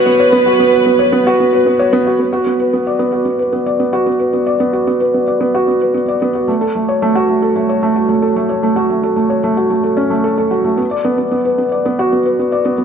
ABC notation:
X:1
M:4/4
L:1/16
Q:1/4=112
K:F#phr
V:1 name="Violin section"
B12 z4 | z16 | z16 | z16 |
z16 | z16 |]
V:2 name="Felt piano"
B, c B, F B, B B, c B, F B, B B, c B, F | B, F B, B B, d B, F B, B B, d B, F B, B | B, d B, F B, B B, d B, F B, B B, d B, F | A, A A, c A, F A, A A, c A, F A, A A, c |
A, F A, A A, c A, F A, A C A, A A F A, | B, d B, B, B, B B, d B, F B, B B, d B, B, |]